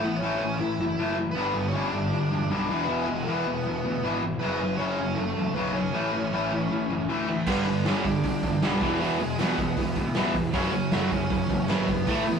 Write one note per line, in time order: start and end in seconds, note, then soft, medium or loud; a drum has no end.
0.00 0.20 A1 medium
0.00 0.21 A2 medium
0.00 0.21 E3 medium
0.00 0.16 B3 medium
0.00 0.21 B4 loud
0.16 0.39 C#4 medium
0.16 0.35 C#5 medium
0.21 0.38 A1 medium
0.21 0.40 A2 medium
0.21 0.41 E3 medium
0.21 0.41 A3 loud
0.36 0.57 A1 medium
0.36 0.59 C#4 medium
0.36 0.55 C#5 loud
0.42 0.59 A2 medium
0.42 0.59 E3 medium
0.55 0.76 A1 medium
0.55 1.13 E4 medium
0.55 1.15 E5 loud
0.60 0.78 A2 medium
0.60 0.78 E3 medium
0.78 0.95 F#1 medium
0.78 0.97 A2 medium
0.78 0.98 E3 medium
0.98 1.32 F#1 medium
0.98 1.17 A2 medium
0.98 1.17 E3 medium
0.98 1.17 A3 medium
1.18 1.35 A2 medium
1.18 1.35 E3 medium
1.31 1.71 B3 medium
1.31 1.68 B4 loud
1.36 1.53 G1 medium
1.36 1.54 G2 medium
1.36 1.55 D3 medium
1.36 1.55 G3 loud
1.54 1.72 G1 loud
1.54 1.73 G2 medium
1.54 1.73 D3 medium
1.68 1.87 C#5 medium
1.73 1.91 G1 medium
1.73 1.93 G2 medium
1.73 1.93 D3 medium
1.73 1.93 G3 loud
1.73 1.92 C#4 medium
1.88 2.83 D5 loud
1.92 2.10 G1 medium
1.92 2.11 G2 medium
1.92 2.11 D3 medium
1.92 2.84 D4 medium
2.12 2.29 G1 loud
2.12 2.31 G2 medium
2.12 2.31 D3 medium
2.31 2.48 E1 medium
2.31 2.49 G2 medium
2.31 2.49 D3 medium
2.50 2.68 B1 medium
2.50 2.69 G2 medium
2.50 2.69 D3 medium
2.50 2.69 G3 medium
2.70 2.87 E1 loud
2.70 2.88 E2 loud
2.70 2.88 B2 loud
2.70 2.88 E3 medium
2.83 3.06 B3 medium
2.83 3.04 B4 loud
2.89 3.06 E1 loud
2.89 3.07 E2 medium
2.89 3.07 B2 loud
2.89 3.07 E3 loud
3.03 3.26 G#4 medium
3.08 3.25 E1 loud
3.08 3.25 E2 medium
3.08 3.26 B2 medium
3.08 3.26 G#3 medium
3.23 3.43 E1 loud
3.23 4.18 B3 medium
3.23 4.16 B4 medium
3.27 3.45 E2 medium
3.27 3.45 B2 loud
3.27 3.46 E3 loud
3.46 3.63 E1 medium
3.46 3.64 E2 medium
3.46 3.64 B2 medium
3.66 3.82 E1 loud
3.66 3.83 E2 medium
3.66 3.83 B2 medium
3.85 4.01 D2 medium
3.85 4.02 E2 medium
3.85 4.02 B2 medium
4.03 4.37 G#1 loud
4.03 4.21 E2 medium
4.03 4.21 B2 medium
4.03 4.22 E3 medium
4.22 4.39 E2 medium
4.22 4.40 B2 medium
4.39 4.58 F#1 medium
4.39 4.60 F#2 loud
4.39 4.60 C#3 loud
4.39 4.60 F#3 loud
4.39 4.77 B3 medium
4.39 4.76 B4 loud
4.59 4.77 F#1 loud
4.59 4.78 F#2 medium
4.59 4.78 C#3 medium
4.77 4.96 F#1 medium
4.77 4.98 F#2 medium
4.77 4.98 C#3 medium
4.77 4.98 F#3 medium
4.77 5.16 C#4 medium
4.77 5.18 C#5 loud
4.97 5.15 F#1 medium
4.97 5.16 F#2 medium
4.97 5.17 C#3 medium
5.15 5.34 F#1 loud
5.15 5.35 F#2 medium
5.15 5.36 C#3 medium
5.15 5.54 A3 medium
5.15 5.56 A4 loud
5.36 5.53 E1 medium
5.36 5.54 F#2 medium
5.36 5.55 C#3 medium
5.54 5.89 B1 medium
5.54 5.74 F#2 medium
5.54 5.74 C#3 medium
5.54 5.75 F#3 loud
5.54 5.74 B3 medium
5.54 5.74 B4 loud
5.74 5.93 F#2 medium
5.74 5.93 C#3 medium
5.74 5.93 F#3 medium
5.74 7.05 C#4 medium
5.74 7.04 C#5 medium
5.92 6.10 A1 medium
5.92 6.12 A2 loud
5.92 6.12 E3 medium
5.92 6.12 A3 loud
6.12 6.30 A1 medium
6.12 6.31 A2 medium
6.12 6.31 E3 medium
6.31 6.48 A1 loud
6.31 6.51 A2 medium
6.31 6.51 E3 medium
6.31 6.51 A3 loud
6.50 6.68 A1 medium
6.50 6.69 A2 medium
6.50 6.69 E3 medium
6.69 6.87 A1 loud
6.69 6.88 A2 medium
6.69 6.88 E3 medium
6.89 7.06 F#1 medium
6.89 7.07 A2 medium
6.89 7.07 E3 medium
7.06 7.41 D2 medium
7.06 7.26 A2 medium
7.06 7.27 E3 medium
7.06 7.27 A3 medium
7.27 7.45 A2 medium
7.27 7.46 E3 medium
7.27 7.46 A3 medium
7.46 7.64 G1 medium
7.46 7.65 G2 medium
7.46 7.65 D3 loud
7.46 7.65 G3 medium
7.46 7.83 B3 medium
7.46 7.86 B4 loud
7.46 kick loud
7.46 crash loud
7.66 7.83 G1 loud
7.66 7.83 G2 medium
7.66 7.84 D3 medium
7.66 open hi-hat medium
7.84 8.02 G1 medium
7.84 8.03 G2 medium
7.84 8.04 D3 medium
7.84 8.04 G3 loud
7.84 8.03 C#4 medium
7.84 8.06 C#5 medium
7.84 snare loud
7.84 open hi-hat medium
8.04 8.22 G1 medium
8.04 8.22 G2 medium
8.04 8.22 D3 medium
8.04 8.96 D4 medium
8.04 9.00 D5 medium
8.04 kick medium
8.04 open hi-hat medium
8.23 8.40 G1 medium
8.23 8.41 G2 medium
8.23 8.41 D3 medium
8.23 kick loud
8.23 open hi-hat medium
8.42 8.59 E1 loud
8.42 8.60 G2 medium
8.42 8.60 D3 medium
8.42 kick medium
8.42 open hi-hat medium
8.62 8.79 B1 loud
8.62 8.80 G2 medium
8.62 8.80 D3 medium
8.62 8.81 G3 medium
8.62 snare loud
8.62 open hi-hat medium
8.80 8.98 E1 medium
8.80 8.99 E2 medium
8.80 8.99 B2 loud
8.80 9.00 E3 loud
8.80 kick loud
8.80 open hi-hat medium
8.99 9.16 E1 loud
8.99 9.19 E2 medium
8.99 9.19 B2 loud
8.99 9.19 E3 loud
8.99 9.18 B3 medium
8.99 9.20 B4 loud
8.99 open hi-hat medium
9.19 9.36 E1 loud
9.19 9.37 E2 medium
9.19 9.37 B2 medium
9.19 9.38 G#3 medium
9.19 9.41 G#4 medium
9.19 open hi-hat medium
9.37 9.55 E1 loud
9.37 9.57 E2 medium
9.37 9.57 B2 loud
9.37 9.57 E3 loud
9.37 10.31 B3 medium
9.37 10.36 B4 medium
9.37 snare loud
9.37 open hi-hat medium
9.58 9.75 E1 medium
9.58 9.75 E2 medium
9.58 9.76 B2 medium
9.58 kick medium
9.58 open hi-hat medium
9.77 9.94 E1 medium
9.77 9.94 E2 medium
9.77 9.95 B2 medium
9.77 kick loud
9.77 open hi-hat medium
9.96 10.13 D2 medium
9.96 10.14 E2 medium
9.96 10.14 B2 medium
9.96 kick medium
9.96 open hi-hat medium
10.14 10.49 A1 medium
10.14 10.34 E2 medium
10.14 10.34 B2 medium
10.14 10.34 E3 loud
10.14 snare loud
10.14 open hi-hat medium
10.35 10.52 E2 medium
10.35 10.52 B2 medium
10.35 kick loud
10.35 open hi-hat medium
10.53 10.71 F#1 loud
10.53 10.71 F#2 loud
10.53 10.71 C#3 loud
10.53 10.72 F#3 medium
10.53 10.90 C#4 medium
10.53 10.94 C#5 loud
10.53 kick loud
10.53 open hi-hat medium
10.72 10.89 F#1 medium
10.72 10.90 F#2 medium
10.72 10.90 C#3 medium
10.72 open hi-hat medium
10.92 11.09 F#1 loud
10.92 11.10 F#2 loud
10.92 11.11 C#3 medium
10.92 11.11 F#3 loud
10.92 11.11 A3 medium
10.92 11.13 A4 medium
10.92 snare loud
10.92 open hi-hat medium
11.10 11.28 F#1 medium
11.10 11.29 F#2 medium
11.10 11.29 C#3 medium
11.10 11.65 C#4 medium
11.10 11.69 C#5 loud
11.10 kick medium
11.10 open hi-hat medium
11.30 11.47 F#1 loud
11.30 11.48 F#2 medium
11.30 11.48 C#3 medium
11.30 kick loud
11.30 open hi-hat medium
11.49 11.66 E1 medium
11.49 11.67 F#2 medium
11.49 11.67 C#3 medium
11.49 kick medium
11.49 open hi-hat medium
11.68 12.02 G#1 medium
11.68 11.87 F#2 medium
11.68 11.87 C#3 medium
11.68 11.88 F#3 medium
11.68 12.05 B3 medium
11.68 12.09 B4 loud
11.68 snare loud
11.68 open hi-hat medium
11.86 12.05 F#2 medium
11.86 12.06 C#3 medium
11.86 12.05 F#3 medium
11.86 kick medium
11.86 open hi-hat medium
12.07 12.24 A1 medium
12.07 12.25 A2 medium
12.07 12.26 E3 loud
12.07 12.26 A3 medium
12.07 12.27 A4 medium
12.07 kick loud
12.07 open hi-hat medium
12.25 12.39 A1 medium
12.25 12.39 A2 medium
12.25 12.39 E3 medium
12.25 12.39 B3 medium
12.25 12.39 B4 medium
12.25 open hi-hat medium